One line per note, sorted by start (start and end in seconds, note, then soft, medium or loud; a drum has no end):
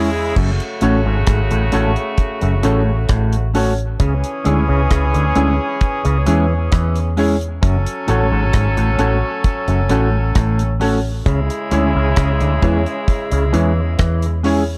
0.00 0.33 E2 medium
0.00 0.33 C#3 medium
0.00 0.33 G#3 loud
0.00 0.33 E4 loud
0.36 0.58 F#1 loud
0.36 0.51 F#2 medium
0.36 3.50 C#3 medium
0.36 3.51 A3 medium
0.36 3.51 F#4 medium
0.36 kick loud
0.36 crash medium
0.60 closed hi-hat medium
0.81 1.04 A1 medium
0.81 0.96 A2 medium
0.81 1.00 A3 medium
0.81 0.98 C#4 medium
0.81 1.00 C#4 medium
0.81 0.98 F#4 medium
0.81 1.00 F#4 medium
0.81 0.98 A4 medium
0.81 1.00 A4 medium
0.81 0.99 C#5 loud
0.81 closed hi-hat medium
1.06 1.26 G#1 loud
1.06 1.19 G#2 medium
1.27 1.49 G#1 medium
1.27 1.41 G#2 medium
1.27 kick loud
1.27 cross-stick loud
1.27 closed hi-hat loud
1.51 1.71 A1 medium
1.51 1.64 A2 medium
1.51 closed hi-hat medium
1.72 1.95 A1 medium
1.72 1.87 A2 medium
1.72 1.90 A3 medium
1.72 1.91 C#4 medium
1.72 1.89 C#4 medium
1.72 1.89 F#4 medium
1.72 1.91 F#4 medium
1.72 1.89 A4 medium
1.72 1.91 A4 loud
1.72 1.89 C#5 medium
1.72 closed hi-hat medium
1.96 2.05 A4 soft
1.96 2.05 C#5 soft
1.96 closed hi-hat soft
2.18 kick loud
2.18 closed hi-hat medium
2.41 2.62 F#1 medium
2.41 2.55 F#2 medium
2.41 closed hi-hat soft
2.63 3.05 A1 loud
2.63 2.91 A2 medium
2.63 2.81 A3 medium
2.63 2.81 C#4 medium
2.63 2.80 C#4 medium
2.63 2.82 F#4 medium
2.63 2.80 F#4 medium
2.63 2.80 A4 medium
2.63 2.82 A4 loud
2.63 2.80 C#5 loud
2.63 closed hi-hat medium
3.09 3.96 A1 medium
3.09 3.36 A2 medium
3.09 kick loud
3.09 cross-stick loud
3.09 closed hi-hat medium
3.33 closed hi-hat medium
3.54 3.72 A3 medium
3.54 3.72 C#4 medium
3.54 3.71 C#4 loud
3.54 3.73 F#4 loud
3.54 3.71 F#4 medium
3.54 3.73 A4 loud
3.54 3.71 A4 medium
3.54 3.71 C#5 loud
3.54 open hi-hat medium
3.78 closed hi-hat soft
4.00 4.22 C#2 loud
4.00 4.14 C#3 medium
4.00 7.14 E3 medium
4.00 7.14 C#4 medium
4.00 7.14 G#4 medium
4.00 kick loud
4.00 closed hi-hat loud
4.24 closed hi-hat medium
4.44 4.67 D2 medium
4.44 4.59 D3 medium
4.44 4.63 G#3 medium
4.44 4.63 C#4 medium
4.44 4.61 C#4 medium
4.44 4.63 E4 medium
4.44 4.61 E4 medium
4.44 4.62 G#4 medium
4.44 4.64 G#4 medium
4.44 4.62 C#5 medium
4.44 closed hi-hat medium
4.69 4.89 C#2 medium
4.69 4.82 C#3 medium
4.90 5.13 C#2 medium
4.90 5.05 C#3 medium
4.90 kick loud
4.90 cross-stick loud
4.90 closed hi-hat loud
5.14 5.34 D2 medium
5.14 5.27 D3 medium
5.14 closed hi-hat medium
5.35 5.58 D2 medium
5.35 5.50 D3 medium
5.35 5.54 G#3 medium
5.35 5.52 C#4 loud
5.35 5.54 C#4 medium
5.35 5.52 E4 medium
5.35 5.54 E4 loud
5.35 5.52 G#4 medium
5.35 5.54 G#4 loud
5.35 5.52 C#5 loud
5.35 closed hi-hat medium
5.60 5.69 G#4 soft
5.60 5.69 C#5 soft
5.81 kick loud
5.81 closed hi-hat medium
6.05 6.25 C#2 loud
6.05 6.18 C#3 medium
6.05 closed hi-hat medium
6.26 6.68 E2 loud
6.26 6.54 E3 medium
6.26 6.44 G#3 medium
6.26 6.43 C#4 medium
6.26 6.45 C#4 medium
6.26 6.43 E4 medium
6.26 6.45 E4 medium
6.26 6.43 G#4 medium
6.26 6.45 G#4 loud
6.26 6.43 C#5 medium
6.26 closed hi-hat medium
6.72 7.59 E2 loud
6.72 6.99 E3 medium
6.72 kick loud
6.72 cross-stick loud
6.72 closed hi-hat medium
6.96 closed hi-hat medium
7.17 7.35 G#3 medium
7.17 7.35 C#4 medium
7.17 7.34 C#4 medium
7.17 7.36 E4 medium
7.17 7.34 E4 medium
7.17 7.36 G#4 loud
7.17 7.34 G#4 medium
7.17 7.34 C#5 loud
7.17 open hi-hat medium
7.41 closed hi-hat soft
7.62 7.85 F#1 loud
7.62 7.77 F#2 loud
7.62 10.76 F#3 medium
7.62 10.76 C#4 medium
7.62 10.77 A4 medium
7.62 kick loud
7.62 closed hi-hat loud
7.86 closed hi-hat medium
8.07 8.30 A1 medium
8.07 8.22 A2 medium
8.07 8.26 A3 medium
8.07 8.26 C#4 medium
8.07 8.24 C#4 loud
8.07 8.26 F#4 medium
8.07 8.25 F#4 medium
8.07 8.27 A4 medium
8.07 8.25 A4 medium
8.07 8.25 C#5 loud
8.07 closed hi-hat medium
8.32 8.52 G#1 loud
8.32 8.45 G#2 medium
8.53 8.76 G#1 loud
8.53 8.68 G#2 medium
8.53 kick loud
8.53 cross-stick loud
8.53 closed hi-hat loud
8.77 8.97 A1 medium
8.77 8.90 A2 medium
8.77 closed hi-hat medium
8.98 9.21 A1 loud
8.98 9.13 A2 medium
8.98 9.16 A3 medium
8.98 9.17 C#4 medium
8.98 9.15 C#4 loud
8.98 9.17 F#4 medium
8.98 9.15 F#4 medium
8.98 9.17 A4 medium
8.98 9.15 A4 medium
8.98 9.16 C#5 loud
8.98 closed hi-hat medium
9.24 9.32 A4 soft
9.24 9.32 C#5 soft
9.44 kick loud
9.44 closed hi-hat medium
9.68 9.88 F#1 medium
9.68 9.81 F#2 medium
9.68 closed hi-hat medium
9.89 10.31 A1 loud
9.89 10.17 A2 medium
9.89 10.08 A3 loud
9.89 10.08 C#4 medium
9.89 10.06 C#4 medium
9.89 10.08 F#4 loud
9.89 10.06 F#4 medium
9.89 10.06 A4 medium
9.89 10.08 A4 loud
9.89 10.07 C#5 medium
9.89 closed hi-hat medium
10.35 11.23 A1 loud
10.35 10.63 A2 medium
10.35 kick loud
10.35 cross-stick loud
10.35 closed hi-hat loud
10.59 closed hi-hat medium
10.80 10.98 A3 medium
10.80 10.99 C#4 medium
10.80 10.97 C#4 loud
10.80 10.99 F#4 medium
10.80 10.97 F#4 medium
10.80 10.99 A4 loud
10.80 10.97 A4 medium
10.80 10.98 C#5 loud
10.80 open hi-hat medium
11.26 11.48 C#2 loud
11.26 11.40 C#3 loud
11.26 14.40 C#3 medium
11.26 14.40 G#3 medium
11.26 14.40 E4 medium
11.26 kick loud
11.26 closed hi-hat loud
11.50 closed hi-hat medium
11.71 11.93 D2 medium
11.71 11.86 D3 medium
11.71 11.89 G#3 medium
11.71 11.90 C#4 medium
11.71 11.88 C#4 medium
11.71 11.90 E4 medium
11.71 11.88 E4 medium
11.71 11.90 G#4 medium
11.71 11.88 G#4 medium
11.71 11.88 C#5 loud
11.71 closed hi-hat medium
11.95 12.15 C#2 medium
11.95 12.08 C#3 medium
12.16 12.39 C#2 loud
12.16 12.32 C#3 medium
12.16 kick loud
12.16 cross-stick loud
12.16 closed hi-hat loud
12.40 12.61 D2 medium
12.40 12.54 D3 medium
12.40 closed hi-hat medium
12.62 12.84 E2 medium
12.62 12.77 E3 medium
12.62 12.80 G#3 medium
12.62 12.78 C#4 medium
12.62 12.81 C#4 medium
12.62 12.79 E4 medium
12.62 12.81 E4 medium
12.62 12.79 G#4 medium
12.62 12.81 G#4 medium
12.62 12.79 C#5 loud
12.62 kick medium
12.62 closed hi-hat medium
12.86 12.95 G#4 soft
12.86 12.95 C#5 soft
12.86 closed hi-hat soft
13.08 kick loud
13.08 closed hi-hat medium
13.32 13.52 C#2 medium
13.32 13.45 C#3 medium
13.32 closed hi-hat medium
13.53 13.95 E2 medium
13.53 13.80 E3 medium
13.53 13.71 G#3 medium
13.53 13.71 C#4 medium
13.53 13.69 C#4 medium
13.53 13.70 E4 medium
13.53 13.72 E4 medium
13.53 13.70 G#4 medium
13.53 13.72 G#4 medium
13.53 13.70 C#5 medium
13.53 closed hi-hat medium
13.98 14.78 E2 medium
13.98 14.26 E3 medium
13.98 kick loud
13.98 cross-stick loud
13.98 closed hi-hat medium
14.22 closed hi-hat medium
14.43 14.62 G#3 medium
14.43 14.62 C#4 medium
14.43 14.61 C#4 medium
14.43 14.63 E4 medium
14.43 14.61 E4 medium
14.43 14.63 G#4 loud
14.43 14.61 G#4 medium
14.43 14.61 C#5 loud
14.43 open hi-hat medium